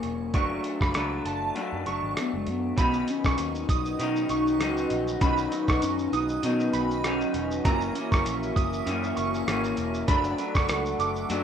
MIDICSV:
0, 0, Header, 1, 7, 480
1, 0, Start_track
1, 0, Key_signature, 5, "major"
1, 0, Tempo, 609137
1, 266, Time_signature, 4, 2, 24, 8
1, 9012, End_track
2, 0, Start_track
2, 0, Title_t, "Synth bell"
2, 0, Program_c, 0, 98
2, 273, Note_on_c, 0, 85, 83
2, 395, Note_off_c, 0, 85, 0
2, 643, Note_on_c, 0, 83, 65
2, 743, Note_off_c, 0, 83, 0
2, 993, Note_on_c, 0, 81, 67
2, 1218, Note_off_c, 0, 81, 0
2, 1471, Note_on_c, 0, 85, 67
2, 1698, Note_off_c, 0, 85, 0
2, 2192, Note_on_c, 0, 83, 88
2, 2315, Note_off_c, 0, 83, 0
2, 2564, Note_on_c, 0, 85, 63
2, 2665, Note_off_c, 0, 85, 0
2, 2914, Note_on_c, 0, 87, 75
2, 3140, Note_off_c, 0, 87, 0
2, 3390, Note_on_c, 0, 85, 65
2, 3739, Note_off_c, 0, 85, 0
2, 4109, Note_on_c, 0, 83, 85
2, 4234, Note_off_c, 0, 83, 0
2, 4481, Note_on_c, 0, 85, 71
2, 4583, Note_off_c, 0, 85, 0
2, 4831, Note_on_c, 0, 87, 72
2, 5058, Note_off_c, 0, 87, 0
2, 5306, Note_on_c, 0, 83, 70
2, 5535, Note_off_c, 0, 83, 0
2, 6029, Note_on_c, 0, 82, 92
2, 6153, Note_off_c, 0, 82, 0
2, 6398, Note_on_c, 0, 85, 69
2, 6501, Note_off_c, 0, 85, 0
2, 6745, Note_on_c, 0, 87, 75
2, 6973, Note_off_c, 0, 87, 0
2, 7223, Note_on_c, 0, 85, 69
2, 7573, Note_off_c, 0, 85, 0
2, 7942, Note_on_c, 0, 83, 85
2, 8068, Note_off_c, 0, 83, 0
2, 8312, Note_on_c, 0, 85, 69
2, 8416, Note_off_c, 0, 85, 0
2, 8666, Note_on_c, 0, 86, 67
2, 8892, Note_off_c, 0, 86, 0
2, 9012, End_track
3, 0, Start_track
3, 0, Title_t, "Analog synth pad"
3, 0, Program_c, 1, 89
3, 2187, Note_on_c, 1, 71, 78
3, 2188, Note_on_c, 1, 61, 80
3, 2190, Note_on_c, 1, 66, 74
3, 2191, Note_on_c, 1, 75, 89
3, 5995, Note_off_c, 1, 71, 0
3, 5997, Note_off_c, 1, 75, 0
3, 6024, Note_on_c, 1, 76, 94
3, 6025, Note_on_c, 1, 70, 77
3, 7913, Note_off_c, 1, 61, 0
3, 7914, Note_off_c, 1, 66, 0
3, 7924, Note_off_c, 1, 70, 0
3, 7924, Note_off_c, 1, 76, 0
3, 7943, Note_on_c, 1, 69, 77
3, 7946, Note_on_c, 1, 62, 84
3, 7947, Note_on_c, 1, 78, 94
3, 9012, Note_off_c, 1, 62, 0
3, 9012, Note_off_c, 1, 69, 0
3, 9012, Note_off_c, 1, 78, 0
3, 9012, End_track
4, 0, Start_track
4, 0, Title_t, "Soft synth lead"
4, 0, Program_c, 2, 80
4, 1726, Note_on_c, 2, 59, 86
4, 1858, Note_on_c, 2, 56, 74
4, 1870, Note_off_c, 2, 59, 0
4, 1965, Note_on_c, 2, 59, 86
4, 1977, Note_off_c, 2, 56, 0
4, 2197, Note_off_c, 2, 59, 0
4, 2204, Note_on_c, 2, 59, 99
4, 2441, Note_on_c, 2, 61, 102
4, 2453, Note_off_c, 2, 59, 0
4, 2915, Note_off_c, 2, 61, 0
4, 3154, Note_on_c, 2, 63, 108
4, 3374, Note_off_c, 2, 63, 0
4, 3389, Note_on_c, 2, 63, 102
4, 3637, Note_on_c, 2, 66, 112
4, 3649, Note_off_c, 2, 63, 0
4, 4111, Note_on_c, 2, 61, 104
4, 4123, Note_off_c, 2, 66, 0
4, 4351, Note_on_c, 2, 63, 98
4, 4363, Note_off_c, 2, 61, 0
4, 4589, Note_on_c, 2, 61, 93
4, 4601, Note_off_c, 2, 63, 0
4, 4831, Note_on_c, 2, 63, 96
4, 4843, Note_off_c, 2, 61, 0
4, 5069, Note_off_c, 2, 63, 0
4, 5076, Note_on_c, 2, 59, 88
4, 5295, Note_off_c, 2, 59, 0
4, 5312, Note_on_c, 2, 59, 77
4, 5419, Note_off_c, 2, 59, 0
4, 5554, Note_on_c, 2, 61, 83
4, 5896, Note_off_c, 2, 61, 0
4, 9012, End_track
5, 0, Start_track
5, 0, Title_t, "Clean electric guitar"
5, 0, Program_c, 3, 27
5, 0, Note_on_c, 3, 42, 82
5, 0, Note_on_c, 3, 49, 85
5, 0, Note_on_c, 3, 52, 82
5, 0, Note_on_c, 3, 58, 82
5, 0, Note_on_c, 3, 61, 88
5, 255, Note_off_c, 3, 42, 0
5, 265, Note_on_c, 3, 42, 84
5, 267, Note_off_c, 3, 52, 0
5, 268, Note_off_c, 3, 49, 0
5, 270, Note_on_c, 3, 54, 78
5, 272, Note_off_c, 3, 58, 0
5, 274, Note_off_c, 3, 61, 0
5, 275, Note_on_c, 3, 57, 89
5, 277, Note_on_c, 3, 62, 87
5, 746, Note_off_c, 3, 42, 0
5, 746, Note_off_c, 3, 57, 0
5, 748, Note_off_c, 3, 54, 0
5, 751, Note_on_c, 3, 54, 61
5, 752, Note_off_c, 3, 62, 0
5, 756, Note_on_c, 3, 57, 61
5, 762, Note_on_c, 3, 62, 59
5, 1224, Note_off_c, 3, 57, 0
5, 1224, Note_on_c, 3, 42, 77
5, 1226, Note_off_c, 3, 62, 0
5, 1229, Note_off_c, 3, 54, 0
5, 1232, Note_on_c, 3, 54, 86
5, 1234, Note_on_c, 3, 57, 85
5, 1236, Note_on_c, 3, 62, 91
5, 1452, Note_off_c, 3, 62, 0
5, 1460, Note_off_c, 3, 57, 0
5, 1462, Note_on_c, 3, 62, 55
5, 1466, Note_off_c, 3, 42, 0
5, 1470, Note_off_c, 3, 54, 0
5, 1470, Note_on_c, 3, 57, 45
5, 1478, Note_on_c, 3, 54, 39
5, 2179, Note_on_c, 3, 47, 79
5, 2185, Note_off_c, 3, 62, 0
5, 2185, Note_on_c, 3, 51, 82
5, 2189, Note_off_c, 3, 57, 0
5, 2190, Note_off_c, 3, 54, 0
5, 2193, Note_on_c, 3, 54, 75
5, 2198, Note_on_c, 3, 61, 85
5, 2203, Note_on_c, 3, 63, 81
5, 3134, Note_off_c, 3, 51, 0
5, 3143, Note_on_c, 3, 51, 62
5, 3144, Note_off_c, 3, 47, 0
5, 3145, Note_off_c, 3, 54, 0
5, 3148, Note_on_c, 3, 54, 64
5, 3151, Note_off_c, 3, 63, 0
5, 3152, Note_off_c, 3, 61, 0
5, 3155, Note_on_c, 3, 61, 67
5, 3160, Note_on_c, 3, 63, 67
5, 3612, Note_off_c, 3, 51, 0
5, 3621, Note_on_c, 3, 51, 59
5, 3625, Note_off_c, 3, 54, 0
5, 3629, Note_on_c, 3, 54, 61
5, 3630, Note_off_c, 3, 63, 0
5, 3631, Note_off_c, 3, 61, 0
5, 3635, Note_on_c, 3, 61, 59
5, 3640, Note_on_c, 3, 63, 64
5, 4102, Note_off_c, 3, 51, 0
5, 4105, Note_on_c, 3, 47, 73
5, 4112, Note_on_c, 3, 51, 78
5, 4114, Note_off_c, 3, 63, 0
5, 4116, Note_off_c, 3, 54, 0
5, 4119, Note_on_c, 3, 54, 79
5, 4122, Note_off_c, 3, 61, 0
5, 4125, Note_on_c, 3, 61, 79
5, 4129, Note_on_c, 3, 63, 78
5, 5056, Note_off_c, 3, 51, 0
5, 5065, Note_on_c, 3, 51, 62
5, 5066, Note_off_c, 3, 47, 0
5, 5068, Note_off_c, 3, 54, 0
5, 5071, Note_off_c, 3, 63, 0
5, 5071, Note_on_c, 3, 54, 55
5, 5074, Note_off_c, 3, 61, 0
5, 5078, Note_on_c, 3, 61, 59
5, 5081, Note_on_c, 3, 63, 74
5, 5537, Note_off_c, 3, 51, 0
5, 5546, Note_on_c, 3, 51, 56
5, 5550, Note_off_c, 3, 54, 0
5, 5553, Note_on_c, 3, 54, 55
5, 5554, Note_off_c, 3, 63, 0
5, 5555, Note_off_c, 3, 61, 0
5, 5558, Note_on_c, 3, 61, 59
5, 5563, Note_on_c, 3, 63, 66
5, 6026, Note_off_c, 3, 51, 0
5, 6030, Note_on_c, 3, 42, 83
5, 6033, Note_off_c, 3, 54, 0
5, 6033, Note_on_c, 3, 49, 90
5, 6034, Note_off_c, 3, 61, 0
5, 6035, Note_off_c, 3, 63, 0
5, 6036, Note_on_c, 3, 52, 98
5, 6037, Note_on_c, 3, 58, 92
5, 6041, Note_on_c, 3, 61, 91
5, 6252, Note_off_c, 3, 61, 0
5, 6261, Note_on_c, 3, 61, 57
5, 6263, Note_off_c, 3, 58, 0
5, 6268, Note_off_c, 3, 42, 0
5, 6269, Note_off_c, 3, 49, 0
5, 6271, Note_off_c, 3, 52, 0
5, 6273, Note_on_c, 3, 58, 47
5, 6279, Note_on_c, 3, 52, 47
5, 6980, Note_off_c, 3, 52, 0
5, 6983, Note_on_c, 3, 49, 64
5, 6989, Note_off_c, 3, 58, 0
5, 6990, Note_on_c, 3, 52, 70
5, 6998, Note_on_c, 3, 58, 71
5, 7000, Note_off_c, 3, 61, 0
5, 7003, Note_on_c, 3, 61, 79
5, 7454, Note_off_c, 3, 49, 0
5, 7459, Note_off_c, 3, 52, 0
5, 7463, Note_on_c, 3, 49, 60
5, 7466, Note_off_c, 3, 58, 0
5, 7469, Note_on_c, 3, 52, 59
5, 7475, Note_on_c, 3, 58, 70
5, 7477, Note_off_c, 3, 61, 0
5, 7480, Note_on_c, 3, 61, 81
5, 7942, Note_on_c, 3, 42, 87
5, 7944, Note_off_c, 3, 49, 0
5, 7944, Note_off_c, 3, 52, 0
5, 7948, Note_on_c, 3, 54, 94
5, 7949, Note_off_c, 3, 58, 0
5, 7952, Note_off_c, 3, 61, 0
5, 7952, Note_on_c, 3, 57, 94
5, 7956, Note_on_c, 3, 62, 98
5, 8173, Note_off_c, 3, 62, 0
5, 8182, Note_off_c, 3, 57, 0
5, 8183, Note_off_c, 3, 42, 0
5, 8183, Note_on_c, 3, 62, 54
5, 8186, Note_off_c, 3, 54, 0
5, 8192, Note_on_c, 3, 57, 52
5, 8198, Note_on_c, 3, 54, 46
5, 8901, Note_off_c, 3, 57, 0
5, 8902, Note_off_c, 3, 62, 0
5, 8903, Note_off_c, 3, 54, 0
5, 8906, Note_on_c, 3, 54, 65
5, 8911, Note_on_c, 3, 57, 65
5, 8916, Note_on_c, 3, 62, 80
5, 9012, Note_off_c, 3, 54, 0
5, 9012, Note_off_c, 3, 57, 0
5, 9012, Note_off_c, 3, 62, 0
5, 9012, End_track
6, 0, Start_track
6, 0, Title_t, "Picked electric bass"
6, 0, Program_c, 4, 34
6, 27, Note_on_c, 4, 28, 78
6, 267, Note_off_c, 4, 28, 0
6, 267, Note_on_c, 4, 30, 93
6, 459, Note_off_c, 4, 30, 0
6, 637, Note_on_c, 4, 30, 85
6, 724, Note_off_c, 4, 30, 0
6, 749, Note_on_c, 4, 37, 85
6, 940, Note_off_c, 4, 37, 0
6, 988, Note_on_c, 4, 30, 75
6, 1180, Note_off_c, 4, 30, 0
6, 1361, Note_on_c, 4, 42, 79
6, 1447, Note_off_c, 4, 42, 0
6, 1469, Note_on_c, 4, 30, 70
6, 1574, Note_off_c, 4, 30, 0
6, 1599, Note_on_c, 4, 32, 80
6, 1686, Note_off_c, 4, 32, 0
6, 1840, Note_on_c, 4, 30, 74
6, 1927, Note_off_c, 4, 30, 0
6, 1946, Note_on_c, 4, 42, 87
6, 2139, Note_off_c, 4, 42, 0
6, 2186, Note_on_c, 4, 35, 90
6, 2379, Note_off_c, 4, 35, 0
6, 2557, Note_on_c, 4, 35, 80
6, 2644, Note_off_c, 4, 35, 0
6, 2669, Note_on_c, 4, 39, 84
6, 2861, Note_off_c, 4, 39, 0
6, 2908, Note_on_c, 4, 35, 82
6, 3100, Note_off_c, 4, 35, 0
6, 3148, Note_on_c, 4, 47, 93
6, 3340, Note_off_c, 4, 47, 0
6, 3385, Note_on_c, 4, 35, 84
6, 3624, Note_off_c, 4, 35, 0
6, 3624, Note_on_c, 4, 37, 83
6, 3818, Note_off_c, 4, 37, 0
6, 3869, Note_on_c, 4, 34, 85
6, 4061, Note_off_c, 4, 34, 0
6, 4109, Note_on_c, 4, 35, 86
6, 4300, Note_off_c, 4, 35, 0
6, 4477, Note_on_c, 4, 35, 89
6, 4565, Note_off_c, 4, 35, 0
6, 4589, Note_on_c, 4, 42, 80
6, 4781, Note_off_c, 4, 42, 0
6, 4827, Note_on_c, 4, 35, 84
6, 5019, Note_off_c, 4, 35, 0
6, 5068, Note_on_c, 4, 47, 90
6, 5260, Note_off_c, 4, 47, 0
6, 5308, Note_on_c, 4, 35, 80
6, 5691, Note_off_c, 4, 35, 0
6, 5786, Note_on_c, 4, 28, 84
6, 5978, Note_off_c, 4, 28, 0
6, 6028, Note_on_c, 4, 30, 97
6, 6220, Note_off_c, 4, 30, 0
6, 6398, Note_on_c, 4, 30, 96
6, 6485, Note_off_c, 4, 30, 0
6, 6506, Note_on_c, 4, 34, 84
6, 6698, Note_off_c, 4, 34, 0
6, 6748, Note_on_c, 4, 30, 94
6, 6939, Note_off_c, 4, 30, 0
6, 6987, Note_on_c, 4, 42, 96
6, 7178, Note_off_c, 4, 42, 0
6, 7230, Note_on_c, 4, 30, 88
6, 7420, Note_off_c, 4, 30, 0
6, 7467, Note_on_c, 4, 32, 96
6, 7658, Note_off_c, 4, 32, 0
6, 7708, Note_on_c, 4, 28, 88
6, 7898, Note_off_c, 4, 28, 0
6, 7945, Note_on_c, 4, 30, 96
6, 8137, Note_off_c, 4, 30, 0
6, 8315, Note_on_c, 4, 30, 86
6, 8401, Note_off_c, 4, 30, 0
6, 8422, Note_on_c, 4, 37, 84
6, 8615, Note_off_c, 4, 37, 0
6, 8660, Note_on_c, 4, 30, 85
6, 8853, Note_off_c, 4, 30, 0
6, 8902, Note_on_c, 4, 42, 80
6, 9012, Note_off_c, 4, 42, 0
6, 9012, End_track
7, 0, Start_track
7, 0, Title_t, "Drums"
7, 23, Note_on_c, 9, 42, 50
7, 102, Note_off_c, 9, 42, 0
7, 265, Note_on_c, 9, 42, 60
7, 267, Note_on_c, 9, 36, 99
7, 344, Note_off_c, 9, 42, 0
7, 346, Note_off_c, 9, 36, 0
7, 504, Note_on_c, 9, 42, 44
7, 582, Note_off_c, 9, 42, 0
7, 637, Note_on_c, 9, 36, 79
7, 646, Note_on_c, 9, 37, 71
7, 716, Note_off_c, 9, 36, 0
7, 725, Note_off_c, 9, 37, 0
7, 742, Note_on_c, 9, 42, 69
7, 748, Note_on_c, 9, 37, 84
7, 821, Note_off_c, 9, 42, 0
7, 827, Note_off_c, 9, 37, 0
7, 989, Note_on_c, 9, 42, 46
7, 1068, Note_off_c, 9, 42, 0
7, 1227, Note_on_c, 9, 42, 56
7, 1305, Note_off_c, 9, 42, 0
7, 1467, Note_on_c, 9, 42, 49
7, 1546, Note_off_c, 9, 42, 0
7, 1709, Note_on_c, 9, 37, 78
7, 1709, Note_on_c, 9, 42, 61
7, 1788, Note_off_c, 9, 37, 0
7, 1788, Note_off_c, 9, 42, 0
7, 1943, Note_on_c, 9, 42, 49
7, 2022, Note_off_c, 9, 42, 0
7, 2188, Note_on_c, 9, 36, 101
7, 2188, Note_on_c, 9, 42, 70
7, 2188, Note_on_c, 9, 82, 63
7, 2266, Note_off_c, 9, 36, 0
7, 2267, Note_off_c, 9, 42, 0
7, 2267, Note_off_c, 9, 82, 0
7, 2313, Note_on_c, 9, 82, 50
7, 2391, Note_off_c, 9, 82, 0
7, 2424, Note_on_c, 9, 42, 46
7, 2424, Note_on_c, 9, 82, 46
7, 2503, Note_off_c, 9, 42, 0
7, 2503, Note_off_c, 9, 82, 0
7, 2555, Note_on_c, 9, 82, 49
7, 2557, Note_on_c, 9, 36, 80
7, 2568, Note_on_c, 9, 37, 76
7, 2634, Note_off_c, 9, 82, 0
7, 2636, Note_off_c, 9, 36, 0
7, 2647, Note_off_c, 9, 37, 0
7, 2662, Note_on_c, 9, 42, 69
7, 2662, Note_on_c, 9, 82, 69
7, 2741, Note_off_c, 9, 42, 0
7, 2741, Note_off_c, 9, 82, 0
7, 2798, Note_on_c, 9, 82, 45
7, 2877, Note_off_c, 9, 82, 0
7, 2907, Note_on_c, 9, 36, 82
7, 2909, Note_on_c, 9, 42, 50
7, 2909, Note_on_c, 9, 82, 52
7, 2985, Note_off_c, 9, 36, 0
7, 2988, Note_off_c, 9, 42, 0
7, 2988, Note_off_c, 9, 82, 0
7, 3037, Note_on_c, 9, 82, 47
7, 3115, Note_off_c, 9, 82, 0
7, 3148, Note_on_c, 9, 42, 62
7, 3148, Note_on_c, 9, 82, 63
7, 3227, Note_off_c, 9, 42, 0
7, 3227, Note_off_c, 9, 82, 0
7, 3279, Note_on_c, 9, 82, 45
7, 3358, Note_off_c, 9, 82, 0
7, 3383, Note_on_c, 9, 42, 56
7, 3383, Note_on_c, 9, 82, 54
7, 3462, Note_off_c, 9, 42, 0
7, 3462, Note_off_c, 9, 82, 0
7, 3525, Note_on_c, 9, 82, 41
7, 3604, Note_off_c, 9, 82, 0
7, 3629, Note_on_c, 9, 37, 77
7, 3629, Note_on_c, 9, 42, 68
7, 3629, Note_on_c, 9, 82, 63
7, 3708, Note_off_c, 9, 37, 0
7, 3708, Note_off_c, 9, 42, 0
7, 3708, Note_off_c, 9, 82, 0
7, 3761, Note_on_c, 9, 82, 42
7, 3839, Note_off_c, 9, 82, 0
7, 3863, Note_on_c, 9, 42, 53
7, 3863, Note_on_c, 9, 82, 48
7, 3941, Note_off_c, 9, 42, 0
7, 3941, Note_off_c, 9, 82, 0
7, 4000, Note_on_c, 9, 82, 54
7, 4079, Note_off_c, 9, 82, 0
7, 4107, Note_on_c, 9, 42, 61
7, 4107, Note_on_c, 9, 82, 67
7, 4108, Note_on_c, 9, 36, 110
7, 4186, Note_off_c, 9, 42, 0
7, 4186, Note_off_c, 9, 82, 0
7, 4187, Note_off_c, 9, 36, 0
7, 4235, Note_on_c, 9, 82, 48
7, 4314, Note_off_c, 9, 82, 0
7, 4348, Note_on_c, 9, 42, 44
7, 4348, Note_on_c, 9, 82, 48
7, 4427, Note_off_c, 9, 42, 0
7, 4427, Note_off_c, 9, 82, 0
7, 4476, Note_on_c, 9, 82, 49
7, 4478, Note_on_c, 9, 36, 83
7, 4489, Note_on_c, 9, 37, 75
7, 4554, Note_off_c, 9, 82, 0
7, 4557, Note_off_c, 9, 36, 0
7, 4568, Note_off_c, 9, 37, 0
7, 4586, Note_on_c, 9, 42, 73
7, 4586, Note_on_c, 9, 82, 73
7, 4665, Note_off_c, 9, 42, 0
7, 4665, Note_off_c, 9, 82, 0
7, 4718, Note_on_c, 9, 82, 44
7, 4797, Note_off_c, 9, 82, 0
7, 4831, Note_on_c, 9, 42, 47
7, 4831, Note_on_c, 9, 82, 47
7, 4910, Note_off_c, 9, 42, 0
7, 4910, Note_off_c, 9, 82, 0
7, 4956, Note_on_c, 9, 82, 46
7, 5035, Note_off_c, 9, 82, 0
7, 5068, Note_on_c, 9, 42, 64
7, 5068, Note_on_c, 9, 82, 67
7, 5147, Note_off_c, 9, 42, 0
7, 5147, Note_off_c, 9, 82, 0
7, 5202, Note_on_c, 9, 82, 47
7, 5281, Note_off_c, 9, 82, 0
7, 5307, Note_on_c, 9, 42, 51
7, 5307, Note_on_c, 9, 82, 53
7, 5386, Note_off_c, 9, 42, 0
7, 5386, Note_off_c, 9, 82, 0
7, 5445, Note_on_c, 9, 82, 44
7, 5524, Note_off_c, 9, 82, 0
7, 5550, Note_on_c, 9, 37, 82
7, 5550, Note_on_c, 9, 42, 64
7, 5550, Note_on_c, 9, 82, 64
7, 5629, Note_off_c, 9, 37, 0
7, 5629, Note_off_c, 9, 42, 0
7, 5629, Note_off_c, 9, 82, 0
7, 5682, Note_on_c, 9, 82, 43
7, 5761, Note_off_c, 9, 82, 0
7, 5785, Note_on_c, 9, 42, 54
7, 5785, Note_on_c, 9, 82, 51
7, 5864, Note_off_c, 9, 42, 0
7, 5864, Note_off_c, 9, 82, 0
7, 5921, Note_on_c, 9, 82, 57
7, 5999, Note_off_c, 9, 82, 0
7, 6029, Note_on_c, 9, 36, 105
7, 6030, Note_on_c, 9, 42, 70
7, 6030, Note_on_c, 9, 82, 64
7, 6107, Note_off_c, 9, 36, 0
7, 6108, Note_off_c, 9, 42, 0
7, 6108, Note_off_c, 9, 82, 0
7, 6155, Note_on_c, 9, 82, 44
7, 6234, Note_off_c, 9, 82, 0
7, 6268, Note_on_c, 9, 42, 50
7, 6268, Note_on_c, 9, 82, 48
7, 6347, Note_off_c, 9, 42, 0
7, 6347, Note_off_c, 9, 82, 0
7, 6399, Note_on_c, 9, 36, 84
7, 6400, Note_on_c, 9, 82, 53
7, 6413, Note_on_c, 9, 37, 78
7, 6478, Note_off_c, 9, 36, 0
7, 6478, Note_off_c, 9, 82, 0
7, 6492, Note_off_c, 9, 37, 0
7, 6509, Note_on_c, 9, 42, 69
7, 6509, Note_on_c, 9, 82, 75
7, 6588, Note_off_c, 9, 42, 0
7, 6588, Note_off_c, 9, 82, 0
7, 6643, Note_on_c, 9, 82, 43
7, 6721, Note_off_c, 9, 82, 0
7, 6748, Note_on_c, 9, 36, 80
7, 6754, Note_on_c, 9, 42, 46
7, 6754, Note_on_c, 9, 82, 50
7, 6827, Note_off_c, 9, 36, 0
7, 6833, Note_off_c, 9, 42, 0
7, 6833, Note_off_c, 9, 82, 0
7, 6880, Note_on_c, 9, 82, 45
7, 6959, Note_off_c, 9, 82, 0
7, 6989, Note_on_c, 9, 42, 65
7, 6989, Note_on_c, 9, 82, 66
7, 7067, Note_off_c, 9, 42, 0
7, 7067, Note_off_c, 9, 82, 0
7, 7122, Note_on_c, 9, 82, 50
7, 7201, Note_off_c, 9, 82, 0
7, 7227, Note_on_c, 9, 42, 50
7, 7227, Note_on_c, 9, 82, 54
7, 7306, Note_off_c, 9, 42, 0
7, 7306, Note_off_c, 9, 82, 0
7, 7363, Note_on_c, 9, 82, 44
7, 7441, Note_off_c, 9, 82, 0
7, 7469, Note_on_c, 9, 37, 81
7, 7469, Note_on_c, 9, 42, 70
7, 7469, Note_on_c, 9, 82, 70
7, 7548, Note_off_c, 9, 37, 0
7, 7548, Note_off_c, 9, 42, 0
7, 7548, Note_off_c, 9, 82, 0
7, 7599, Note_on_c, 9, 82, 44
7, 7678, Note_off_c, 9, 82, 0
7, 7700, Note_on_c, 9, 42, 52
7, 7700, Note_on_c, 9, 82, 50
7, 7778, Note_off_c, 9, 42, 0
7, 7778, Note_off_c, 9, 82, 0
7, 7834, Note_on_c, 9, 82, 56
7, 7913, Note_off_c, 9, 82, 0
7, 7943, Note_on_c, 9, 42, 62
7, 7943, Note_on_c, 9, 82, 61
7, 7944, Note_on_c, 9, 36, 107
7, 8022, Note_off_c, 9, 42, 0
7, 8022, Note_off_c, 9, 82, 0
7, 8023, Note_off_c, 9, 36, 0
7, 8070, Note_on_c, 9, 82, 50
7, 8149, Note_off_c, 9, 82, 0
7, 8182, Note_on_c, 9, 42, 46
7, 8182, Note_on_c, 9, 82, 47
7, 8261, Note_off_c, 9, 42, 0
7, 8261, Note_off_c, 9, 82, 0
7, 8313, Note_on_c, 9, 82, 53
7, 8314, Note_on_c, 9, 36, 84
7, 8326, Note_on_c, 9, 37, 75
7, 8392, Note_off_c, 9, 82, 0
7, 8393, Note_off_c, 9, 36, 0
7, 8405, Note_off_c, 9, 37, 0
7, 8422, Note_on_c, 9, 42, 69
7, 8422, Note_on_c, 9, 82, 73
7, 8428, Note_on_c, 9, 37, 90
7, 8500, Note_off_c, 9, 42, 0
7, 8500, Note_off_c, 9, 82, 0
7, 8506, Note_off_c, 9, 37, 0
7, 8556, Note_on_c, 9, 82, 45
7, 8635, Note_off_c, 9, 82, 0
7, 8666, Note_on_c, 9, 42, 48
7, 8666, Note_on_c, 9, 82, 51
7, 8745, Note_off_c, 9, 42, 0
7, 8745, Note_off_c, 9, 82, 0
7, 8795, Note_on_c, 9, 82, 46
7, 8873, Note_off_c, 9, 82, 0
7, 8903, Note_on_c, 9, 42, 59
7, 8903, Note_on_c, 9, 82, 66
7, 8981, Note_off_c, 9, 42, 0
7, 8981, Note_off_c, 9, 82, 0
7, 9012, End_track
0, 0, End_of_file